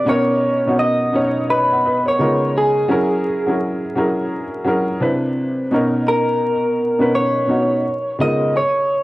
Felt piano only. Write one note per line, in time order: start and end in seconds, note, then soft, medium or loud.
0.05 0.40 B2 medium
0.05 0.40 B3 loud
0.05 0.41 C#4 loud
0.05 0.41 D#4 medium
0.05 0.41 A#4 loud
0.66 0.98 B2 medium
0.66 0.99 B3 medium
0.66 0.99 C#4 medium
0.66 0.99 D#4 medium
0.66 1.00 F#4 medium
1.12 1.59 B2 medium
1.12 1.60 B3 medium
1.12 1.60 C#4 medium
1.12 1.61 D#4 medium
1.12 1.49 C#5 loud
1.49 1.70 B4 medium
1.49 1.70 D#5 medium
1.72 1.84 D#5 medium
1.72 1.84 F#5 medium
1.85 2.06 B4 medium
1.85 2.05 D#5 medium
2.06 2.20 A#4 soft
2.06 2.39 C#5 medium
2.19 2.79 C#3 medium
2.19 2.79 G#3 medium
2.19 2.79 B3 medium
2.19 2.80 D#4 medium
2.19 2.80 F4 medium
2.19 2.80 A#4 medium
2.88 3.23 F#3 loud
2.88 3.23 C#4 loud
2.88 3.23 E4 loud
2.88 3.24 G#4 medium
2.88 3.24 A#4 loud
3.46 3.79 F#3 medium
3.46 3.80 C#4 medium
3.46 3.80 E4 medium
3.46 3.81 G#4 medium
3.46 3.81 A#4 medium
3.95 4.42 F#3 medium
3.95 4.42 C#4 medium
3.95 4.43 E4 medium
3.95 4.43 G#4 medium
3.95 4.43 A#4 loud
4.64 5.00 F#3 medium
4.64 5.01 C#4 medium
4.64 5.00 E4 medium
4.64 5.01 G#4 medium
4.64 5.02 A#4 loud
5.00 5.61 C3 medium
5.00 5.61 C4 medium
5.00 5.61 D4 medium
5.00 5.61 E4 medium
5.00 5.62 B4 medium
5.71 6.51 B2 medium
5.71 6.51 B3 medium
5.71 6.52 C#4 medium
5.71 6.52 D#4 medium
5.71 6.52 A#4 medium
6.99 7.32 B2 medium
6.99 7.32 B3 medium
6.99 7.33 C#4 medium
6.99 7.33 D#4 medium
6.99 7.33 B4 medium
7.47 7.83 B2 medium
7.47 7.83 B3 medium
7.47 7.84 C#4 medium
7.47 7.84 D#4 medium
7.47 7.85 F#4 medium
8.18 8.54 C#3 medium
8.18 8.54 G#3 medium
8.18 8.54 B3 medium
8.18 8.55 D#4 medium
8.18 8.55 F4 medium
8.18 8.55 A#4 medium